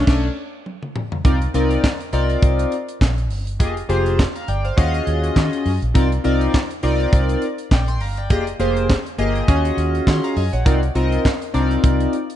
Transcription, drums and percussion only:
0.07 kick loud
0.07 snare loud
0.07 crash medium
0.66 high tom medium
0.83 mid tom medium
0.96 mid tom medium
1.12 floor tom medium
1.25 kick loud
1.25 closed hi-hat medium
1.42 closed hi-hat medium
1.54 closed hi-hat medium
1.71 closed hi-hat medium
1.84 kick loud
1.84 snare loud
1.84 clap medium
2.00 closed hi-hat soft
2.13 closed hi-hat medium
2.30 closed hi-hat soft
2.42 kick loud
2.42 closed hi-hat loud
2.59 closed hi-hat medium
2.72 closed hi-hat medium
2.89 closed hi-hat medium
3.01 kick loud
3.01 snare loud
3.01 clap medium
3.18 closed hi-hat medium
3.30 open hi-hat medium
3.47 closed hi-hat medium
3.60 kick loud
3.60 closed hi-hat medium
3.77 closed hi-hat medium
3.90 closed hi-hat medium
4.06 closed hi-hat medium
4.19 kick loud
4.19 snare loud
4.19 clap medium
4.36 closed hi-hat soft
4.48 closed hi-hat medium
4.65 closed hi-hat soft
4.78 kick loud
4.78 closed hi-hat medium
4.94 closed hi-hat medium
5.07 closed hi-hat medium
5.24 closed hi-hat medium
5.36 kick loud
5.36 snare loud
5.36 clap medium
5.53 closed hi-hat medium
5.66 open hi-hat medium
5.82 closed hi-hat medium
5.95 kick loud
5.95 closed hi-hat medium
6.12 closed hi-hat medium
6.24 closed hi-hat medium
6.41 closed hi-hat medium
6.54 kick loud
6.54 snare loud
6.54 clap medium
6.70 closed hi-hat soft
6.83 closed hi-hat medium
7.00 closed hi-hat soft
7.13 kick loud
7.13 closed hi-hat medium
7.29 closed hi-hat medium
7.42 closed hi-hat medium
7.58 closed hi-hat medium
7.71 kick loud
7.71 snare loud
7.71 clap medium
7.88 closed hi-hat medium
8.01 open hi-hat medium
8.17 closed hi-hat medium
8.30 kick loud
8.30 closed hi-hat medium
8.47 closed hi-hat medium
8.60 closed hi-hat medium
8.77 closed hi-hat medium
8.90 kick loud
8.90 snare loud
8.90 clap medium
9.06 closed hi-hat soft
9.19 closed hi-hat medium
9.35 closed hi-hat soft
9.48 kick loud
9.48 closed hi-hat medium
9.65 closed hi-hat medium
9.78 closed hi-hat medium
9.95 closed hi-hat medium
10.07 kick loud
10.07 snare loud
10.07 clap medium
10.24 closed hi-hat medium
10.36 open hi-hat medium
10.53 closed hi-hat medium
10.66 kick loud
10.66 closed hi-hat medium
10.83 closed hi-hat medium
10.95 closed hi-hat medium
11.12 closed hi-hat medium
11.25 kick loud
11.25 snare loud
11.25 clap medium
11.42 closed hi-hat soft
11.54 closed hi-hat medium
11.71 closed hi-hat soft
11.84 kick loud
11.84 closed hi-hat medium
12.00 closed hi-hat medium
12.13 closed hi-hat medium
12.30 closed hi-hat medium

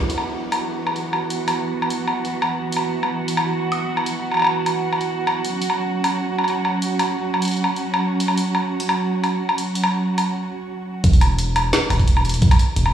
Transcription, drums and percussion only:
0.10 open hi-hat medium
0.18 low woodblock soft
0.52 open hi-hat medium
0.52 low woodblock medium
0.87 low woodblock soft
0.96 open hi-hat soft
1.13 low woodblock medium
1.30 open hi-hat medium
1.48 open hi-hat medium
1.48 low woodblock medium
1.82 low woodblock soft
1.90 open hi-hat medium
2.08 low woodblock soft
2.25 open hi-hat soft
2.42 low woodblock medium
2.72 open hi-hat medium
2.77 low woodblock soft
3.03 low woodblock soft
3.28 open hi-hat medium
3.37 low woodblock medium
3.72 open hi-hat soft
3.72 low woodblock soft
3.97 low woodblock soft
4.06 open hi-hat medium
4.32 low woodblock soft
4.34 low woodblock soft
4.37 low woodblock soft
4.39 low woodblock soft
4.42 low woodblock medium
4.44 low woodblock medium
4.47 low woodblock medium
4.66 open hi-hat medium
4.66 low woodblock soft
4.93 low woodblock soft
5.01 open hi-hat soft
5.27 low woodblock medium
5.45 open hi-hat medium
5.62 open hi-hat medium
5.70 low woodblock soft
6.04 open hi-hat medium
6.04 low woodblock medium
6.39 low woodblock soft
6.44 open hi-hat soft
6.44 low woodblock soft
6.50 low woodblock soft
6.65 low woodblock soft
6.82 open hi-hat medium
6.99 open hi-hat medium
6.99 low woodblock medium
7.34 low woodblock soft
7.42 open hi-hat medium
7.45 open hi-hat soft
7.48 open hi-hat soft
7.51 open hi-hat soft
7.54 open hi-hat soft
7.57 open hi-hat soft
7.64 low woodblock soft
7.76 open hi-hat soft
7.94 low woodblock medium
8.20 open hi-hat medium
8.28 low woodblock soft
8.38 open hi-hat medium
8.55 low woodblock soft
8.80 open hi-hat medium
8.89 low woodblock medium
9.24 open hi-hat soft
9.24 low woodblock soft
9.49 low woodblock medium
9.58 open hi-hat medium
9.75 open hi-hat medium
9.84 low woodblock medium
10.18 open hi-hat medium
10.18 low woodblock medium
11.04 kick loud
11.04 closed hi-hat medium
11.13 open hi-hat medium
11.21 closed hi-hat medium
11.21 low woodblock medium
11.39 closed hi-hat medium
11.56 open hi-hat medium
11.56 low woodblock medium
11.73 snare loud
11.73 closed hi-hat medium
11.90 closed hi-hat medium
11.90 low woodblock medium
11.99 kick medium
11.99 open hi-hat soft
12.08 closed hi-hat medium
12.17 low woodblock medium
12.25 closed hi-hat medium
12.29 closed hi-hat medium
12.34 open hi-hat medium
12.42 kick loud
12.42 closed hi-hat medium
12.51 open hi-hat medium
12.51 low woodblock medium
12.59 closed hi-hat medium
12.76 closed hi-hat medium
12.86 low woodblock medium

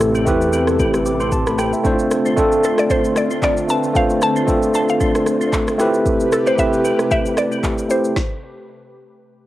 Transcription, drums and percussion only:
0.00 cross-stick medium
0.00 shaker medium
0.15 shaker medium
0.27 kick medium
0.27 shaker medium
0.41 shaker medium
0.53 shaker medium
0.67 cross-stick loud
0.67 shaker soft
0.79 kick loud
0.79 shaker medium
0.94 cross-stick medium
0.94 shaker medium
1.06 shaker medium
1.20 shaker medium
1.32 kick medium
1.32 shaker medium
1.47 cross-stick loud
1.47 shaker medium
1.58 cross-stick medium
1.58 shaker medium
1.73 shaker medium
1.85 kick loud
1.85 shaker medium
1.99 shaker medium
2.11 cross-stick loud
2.11 shaker medium
2.26 shaker medium
2.37 kick medium
2.37 shaker medium
2.52 shaker medium
2.64 shaker medium
2.78 cross-stick loud
2.78 shaker soft
2.90 kick loud
2.90 shaker medium
3.05 shaker medium
3.16 cross-stick loud
3.16 shaker medium
3.31 shaker soft
3.42 kick loud
3.42 clap medium
3.42 shaker medium
3.57 shaker medium
3.69 shaker medium
3.83 shaker medium
3.95 kick loud
3.95 shaker medium
4.10 shaker medium
4.22 cross-stick medium
4.22 shaker medium
4.36 shaker medium
4.48 kick medium
4.48 shaker medium
4.63 shaker medium
4.74 shaker medium
4.89 shaker medium
5.01 kick loud
5.01 shaker medium
5.15 cross-stick loud
5.15 shaker medium
5.26 cross-stick medium
5.26 shaker medium
5.41 shaker medium
5.53 kick loud
5.53 clap medium
5.53 shaker medium
5.68 cross-stick loud
5.68 shaker medium
5.80 cross-stick medium
5.80 shaker medium
5.94 shaker medium
6.06 kick loud
6.06 shaker medium
6.20 shaker medium
6.32 cross-stick medium
6.32 shaker medium
6.47 shaker medium
6.58 kick medium
6.58 shaker medium
6.73 shaker medium
6.85 shaker medium
6.99 cross-stick medium
6.99 shaker soft
7.11 kick loud
7.11 shaker medium
7.26 shaker medium
7.37 cross-stick loud
7.37 shaker medium
7.52 shaker medium
7.63 kick loud
7.63 clap medium
7.63 shaker medium
7.78 shaker medium
7.90 shaker medium
8.04 shaker medium
8.16 kick loud
8.16 snare medium

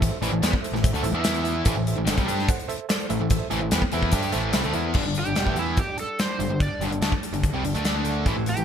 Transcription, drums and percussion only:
0.02 kick loud
0.02 closed hi-hat medium
0.23 closed hi-hat medium
0.43 snare loud
0.43 closed hi-hat loud
0.53 kick medium
0.64 closed hi-hat medium
0.75 snare soft
0.84 kick loud
0.84 closed hi-hat loud
0.95 closed hi-hat medium
1.04 closed hi-hat medium
1.24 snare loud
1.24 closed hi-hat loud
1.34 closed hi-hat medium
1.45 closed hi-hat medium
1.65 kick loud
1.65 closed hi-hat loud
1.87 closed hi-hat medium
2.07 snare loud
2.07 closed hi-hat loud
2.18 kick medium
2.18 closed hi-hat soft
2.28 closed hi-hat medium
2.39 snare soft
2.49 kick loud
2.49 closed hi-hat loud
2.60 closed hi-hat soft
2.69 closed hi-hat medium
2.89 snare loud
2.89 closed hi-hat loud
3.00 closed hi-hat soft
3.10 closed hi-hat medium
3.30 kick loud
3.30 closed hi-hat medium
3.51 closed hi-hat medium
3.71 snare loud
3.71 closed hi-hat loud
3.82 kick medium
3.92 closed hi-hat medium
4.03 kick medium
4.12 kick loud
4.12 closed hi-hat loud
4.23 closed hi-hat medium
4.32 closed hi-hat medium
4.53 snare loud
4.53 closed hi-hat loud
4.64 closed hi-hat soft
4.74 closed hi-hat medium
4.94 kick loud
4.94 crash loud
5.15 closed hi-hat medium
5.25 closed hi-hat medium
5.36 snare loud
5.36 closed hi-hat medium
5.47 kick medium
5.56 closed hi-hat medium
5.77 kick loud
5.77 closed hi-hat medium
5.98 closed hi-hat medium
6.19 snare loud
6.19 closed hi-hat medium
6.40 closed hi-hat medium
6.60 kick loud
6.60 closed hi-hat medium
6.81 closed hi-hat medium
6.92 closed hi-hat medium
7.02 snare loud
7.02 closed hi-hat medium
7.12 kick medium
7.23 closed hi-hat medium
7.34 closed hi-hat medium
7.43 kick loud
7.43 closed hi-hat medium
7.65 closed hi-hat medium
7.75 closed hi-hat medium
7.85 snare loud
7.85 closed hi-hat medium
8.05 closed hi-hat medium
8.26 kick loud
8.26 closed hi-hat medium
8.46 closed hi-hat medium
8.57 closed hi-hat medium

